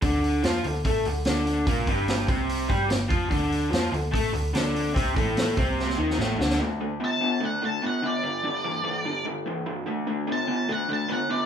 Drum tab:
HH |o-o-o-o-o-o-o-o-|o-o-o-o-o-o-o-o-|o-o-o-o-o-o-o-o-|o-o-o-o---------|
SD |----o-------o---|----o-------o---|----o-------o---|----o---oo-oo-oo|
BD |o-------o-------|o-o---o---o---o-|o-------o-------|o-o---o---------|

HH |----------------|----------------|----------------|
SD |----------------|----------------|----------------|
BD |----------------|----------------|----------------|